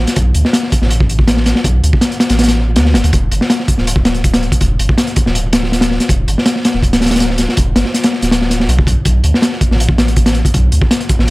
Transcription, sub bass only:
0, 0, Header, 1, 2, 480
1, 0, Start_track
1, 0, Key_signature, 1, "minor"
1, 0, Tempo, 370370
1, 215, Time_signature, 4, 2, 24, 8
1, 14646, End_track
2, 0, Start_track
2, 0, Title_t, "Sub bass"
2, 0, Program_c, 0, 38
2, 216, Note_on_c, 0, 35, 103
2, 432, Note_off_c, 0, 35, 0
2, 456, Note_on_c, 0, 38, 83
2, 566, Note_off_c, 0, 38, 0
2, 1059, Note_on_c, 0, 33, 80
2, 1999, Note_off_c, 0, 33, 0
2, 2131, Note_on_c, 0, 35, 106
2, 2350, Note_off_c, 0, 35, 0
2, 2374, Note_on_c, 0, 38, 83
2, 2486, Note_off_c, 0, 38, 0
2, 2980, Note_on_c, 0, 33, 81
2, 3575, Note_on_c, 0, 38, 101
2, 3595, Note_off_c, 0, 33, 0
2, 3815, Note_on_c, 0, 30, 104
2, 3835, Note_off_c, 0, 38, 0
2, 3926, Note_off_c, 0, 30, 0
2, 3938, Note_on_c, 0, 38, 93
2, 4043, Note_off_c, 0, 38, 0
2, 4059, Note_on_c, 0, 28, 103
2, 4274, Note_off_c, 0, 28, 0
2, 4295, Note_on_c, 0, 31, 82
2, 4406, Note_off_c, 0, 31, 0
2, 4898, Note_on_c, 0, 26, 80
2, 5838, Note_off_c, 0, 26, 0
2, 5976, Note_on_c, 0, 28, 98
2, 6192, Note_off_c, 0, 28, 0
2, 6215, Note_on_c, 0, 31, 79
2, 6326, Note_off_c, 0, 31, 0
2, 6817, Note_on_c, 0, 26, 81
2, 7758, Note_off_c, 0, 26, 0
2, 7895, Note_on_c, 0, 28, 100
2, 8112, Note_off_c, 0, 28, 0
2, 8134, Note_on_c, 0, 31, 78
2, 8246, Note_off_c, 0, 31, 0
2, 8738, Note_on_c, 0, 26, 81
2, 9678, Note_off_c, 0, 26, 0
2, 9816, Note_on_c, 0, 28, 100
2, 10032, Note_off_c, 0, 28, 0
2, 10055, Note_on_c, 0, 31, 79
2, 10166, Note_off_c, 0, 31, 0
2, 10657, Note_on_c, 0, 26, 83
2, 11247, Note_off_c, 0, 26, 0
2, 11255, Note_on_c, 0, 35, 104
2, 11387, Note_on_c, 0, 28, 88
2, 11407, Note_off_c, 0, 35, 0
2, 11488, Note_off_c, 0, 28, 0
2, 11494, Note_on_c, 0, 35, 82
2, 11605, Note_off_c, 0, 35, 0
2, 11736, Note_on_c, 0, 35, 98
2, 11952, Note_off_c, 0, 35, 0
2, 11975, Note_on_c, 0, 38, 82
2, 12086, Note_off_c, 0, 38, 0
2, 12579, Note_on_c, 0, 33, 82
2, 13519, Note_off_c, 0, 33, 0
2, 13663, Note_on_c, 0, 35, 106
2, 13876, Note_off_c, 0, 35, 0
2, 13897, Note_on_c, 0, 38, 82
2, 14007, Note_off_c, 0, 38, 0
2, 14500, Note_on_c, 0, 33, 78
2, 14646, Note_off_c, 0, 33, 0
2, 14646, End_track
0, 0, End_of_file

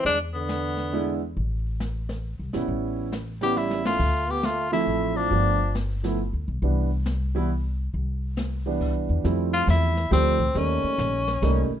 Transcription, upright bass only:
0, 0, Header, 1, 3, 480
1, 0, Start_track
1, 0, Key_signature, 0, "major"
1, 0, Tempo, 437318
1, 57, Time_signature, 3, 2, 24, 8
1, 12952, End_track
2, 0, Start_track
2, 0, Title_t, "Upright bass"
2, 0, Program_c, 0, 32
2, 54, Note_on_c, 0, 40, 67
2, 1458, Note_off_c, 0, 40, 0
2, 1500, Note_on_c, 0, 33, 72
2, 2581, Note_off_c, 0, 33, 0
2, 2628, Note_on_c, 0, 36, 55
2, 2776, Note_off_c, 0, 36, 0
2, 2794, Note_on_c, 0, 34, 57
2, 2937, Note_off_c, 0, 34, 0
2, 2944, Note_on_c, 0, 33, 67
2, 4344, Note_off_c, 0, 33, 0
2, 4386, Note_on_c, 0, 38, 68
2, 5305, Note_off_c, 0, 38, 0
2, 5340, Note_on_c, 0, 33, 67
2, 5792, Note_off_c, 0, 33, 0
2, 5825, Note_on_c, 0, 31, 73
2, 6904, Note_off_c, 0, 31, 0
2, 6950, Note_on_c, 0, 38, 59
2, 7099, Note_off_c, 0, 38, 0
2, 7111, Note_on_c, 0, 35, 65
2, 7259, Note_off_c, 0, 35, 0
2, 7267, Note_on_c, 0, 36, 76
2, 8664, Note_off_c, 0, 36, 0
2, 8714, Note_on_c, 0, 36, 63
2, 9938, Note_off_c, 0, 36, 0
2, 9979, Note_on_c, 0, 40, 63
2, 10135, Note_off_c, 0, 40, 0
2, 10147, Note_on_c, 0, 41, 69
2, 10611, Note_off_c, 0, 41, 0
2, 10619, Note_on_c, 0, 40, 84
2, 11087, Note_off_c, 0, 40, 0
2, 11100, Note_on_c, 0, 38, 79
2, 11567, Note_off_c, 0, 38, 0
2, 11579, Note_on_c, 0, 39, 75
2, 11871, Note_off_c, 0, 39, 0
2, 12056, Note_on_c, 0, 34, 94
2, 12523, Note_off_c, 0, 34, 0
2, 12536, Note_on_c, 0, 36, 88
2, 12828, Note_off_c, 0, 36, 0
2, 12952, End_track
3, 0, Start_track
3, 0, Title_t, "Muted upright bass strokes"
3, 11892, Note_on_c, 9, 29, 42
3, 12002, Note_off_c, 9, 29, 0
3, 12841, Note_on_c, 9, 29, 41
3, 12951, Note_off_c, 9, 29, 0
3, 12952, End_track
0, 0, End_of_file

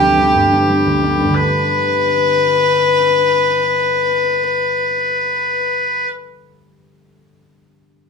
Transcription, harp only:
0, 0, Header, 1, 2, 480
1, 0, Start_track
1, 0, Key_signature, 1, "major"
1, 0, Tempo, 334821
1, 1941, Time_signature, 12, 3, 24, 8
1, 11611, End_track
2, 0, Start_track
2, 0, Title_t, "Harp"
2, 0, Program_c, 0, 46
2, 0, Note_on_c, 0, 38, 69
2, 0, Note_on_c, 0, 57, 36
2, 30, Note_on_c, 0, 55, 50
2, 42, Note_on_c, 0, 62, 52
2, 45, Note_on_c, 0, 59, 41
2, 239, Note_off_c, 0, 55, 0
2, 251, Note_on_c, 0, 55, 48
2, 260, Note_off_c, 0, 59, 0
2, 265, Note_off_c, 0, 62, 0
2, 266, Note_on_c, 0, 59, 44
2, 271, Note_on_c, 0, 62, 56
2, 487, Note_on_c, 0, 43, 59
2, 575, Note_off_c, 0, 38, 0
2, 738, Note_off_c, 0, 55, 0
2, 750, Note_on_c, 0, 55, 45
2, 753, Note_off_c, 0, 59, 0
2, 756, Note_off_c, 0, 62, 0
2, 759, Note_on_c, 0, 59, 40
2, 761, Note_on_c, 0, 62, 52
2, 971, Note_off_c, 0, 55, 0
2, 988, Note_on_c, 0, 55, 44
2, 992, Note_off_c, 0, 59, 0
2, 998, Note_on_c, 0, 59, 37
2, 1000, Note_off_c, 0, 62, 0
2, 1005, Note_on_c, 0, 62, 44
2, 1230, Note_on_c, 0, 38, 63
2, 1293, Note_off_c, 0, 43, 0
2, 1453, Note_off_c, 0, 55, 0
2, 1470, Note_off_c, 0, 59, 0
2, 1470, Note_on_c, 0, 55, 50
2, 1476, Note_on_c, 0, 59, 42
2, 1480, Note_off_c, 0, 62, 0
2, 1485, Note_on_c, 0, 62, 52
2, 1690, Note_off_c, 0, 55, 0
2, 1702, Note_on_c, 0, 55, 39
2, 1710, Note_off_c, 0, 59, 0
2, 1714, Note_off_c, 0, 62, 0
2, 1716, Note_on_c, 0, 59, 39
2, 1720, Note_on_c, 0, 62, 46
2, 1753, Note_on_c, 0, 43, 45
2, 1850, Note_on_c, 0, 50, 46
2, 1929, Note_off_c, 0, 59, 0
2, 1935, Note_on_c, 0, 59, 46
2, 2012, Note_off_c, 0, 38, 0
2, 2012, Note_off_c, 0, 55, 0
2, 2019, Note_off_c, 0, 62, 0
2, 2025, Note_on_c, 0, 62, 39
2, 2116, Note_on_c, 0, 67, 52
2, 3595, Note_off_c, 0, 57, 0
2, 8554, Note_off_c, 0, 43, 0
2, 8652, Note_off_c, 0, 50, 0
2, 8736, Note_off_c, 0, 59, 0
2, 8826, Note_off_c, 0, 62, 0
2, 8918, Note_off_c, 0, 67, 0
2, 11611, End_track
0, 0, End_of_file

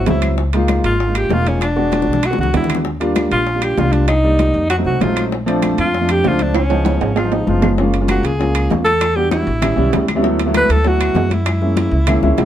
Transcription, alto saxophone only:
0, 0, Header, 1, 2, 480
1, 0, Start_track
1, 0, Tempo, 307850
1, 596, Time_signature, 4, 2, 24, 8
1, 19412, End_track
2, 0, Start_track
2, 0, Title_t, "Alto saxophone"
2, 0, Program_c, 0, 65
2, 157, Note_on_c, 0, 64, 83
2, 472, Note_off_c, 0, 64, 0
2, 1331, Note_on_c, 0, 65, 87
2, 1824, Note_on_c, 0, 67, 92
2, 1847, Note_off_c, 0, 65, 0
2, 2070, Note_on_c, 0, 65, 103
2, 2093, Note_off_c, 0, 67, 0
2, 2310, Note_on_c, 0, 61, 88
2, 2333, Note_off_c, 0, 65, 0
2, 2526, Note_off_c, 0, 61, 0
2, 2536, Note_on_c, 0, 62, 89
2, 3517, Note_on_c, 0, 66, 85
2, 3541, Note_off_c, 0, 62, 0
2, 3741, Note_off_c, 0, 66, 0
2, 3747, Note_on_c, 0, 66, 80
2, 3960, Note_off_c, 0, 66, 0
2, 3999, Note_on_c, 0, 64, 80
2, 4318, Note_off_c, 0, 64, 0
2, 5174, Note_on_c, 0, 65, 93
2, 5659, Note_on_c, 0, 67, 92
2, 5682, Note_off_c, 0, 65, 0
2, 5902, Note_on_c, 0, 65, 103
2, 5925, Note_off_c, 0, 67, 0
2, 6118, Note_on_c, 0, 62, 86
2, 6142, Note_off_c, 0, 65, 0
2, 6352, Note_off_c, 0, 62, 0
2, 6362, Note_on_c, 0, 63, 96
2, 7265, Note_off_c, 0, 63, 0
2, 7322, Note_on_c, 0, 66, 83
2, 7432, Note_off_c, 0, 66, 0
2, 7582, Note_on_c, 0, 66, 84
2, 7820, Note_on_c, 0, 65, 85
2, 7843, Note_off_c, 0, 66, 0
2, 8176, Note_off_c, 0, 65, 0
2, 9048, Note_on_c, 0, 65, 96
2, 9531, Note_on_c, 0, 67, 99
2, 9554, Note_off_c, 0, 65, 0
2, 9778, Note_on_c, 0, 65, 97
2, 9801, Note_off_c, 0, 67, 0
2, 10015, Note_on_c, 0, 62, 88
2, 10038, Note_off_c, 0, 65, 0
2, 10234, Note_off_c, 0, 62, 0
2, 10255, Note_on_c, 0, 61, 89
2, 11132, Note_off_c, 0, 61, 0
2, 11192, Note_on_c, 0, 65, 73
2, 11434, Note_on_c, 0, 63, 73
2, 11457, Note_off_c, 0, 65, 0
2, 11693, Note_on_c, 0, 65, 74
2, 11716, Note_off_c, 0, 63, 0
2, 12033, Note_off_c, 0, 65, 0
2, 12632, Note_on_c, 0, 66, 89
2, 12873, Note_on_c, 0, 68, 89
2, 12897, Note_off_c, 0, 66, 0
2, 13581, Note_off_c, 0, 68, 0
2, 13792, Note_on_c, 0, 69, 92
2, 14278, Note_on_c, 0, 67, 99
2, 14301, Note_off_c, 0, 69, 0
2, 14509, Note_off_c, 0, 67, 0
2, 14518, Note_on_c, 0, 64, 81
2, 15657, Note_off_c, 0, 64, 0
2, 16481, Note_on_c, 0, 71, 99
2, 16707, Note_on_c, 0, 69, 102
2, 16731, Note_off_c, 0, 71, 0
2, 16956, Note_on_c, 0, 66, 90
2, 16980, Note_off_c, 0, 69, 0
2, 17671, Note_on_c, 0, 64, 81
2, 17695, Note_off_c, 0, 66, 0
2, 19412, Note_off_c, 0, 64, 0
2, 19412, End_track
0, 0, End_of_file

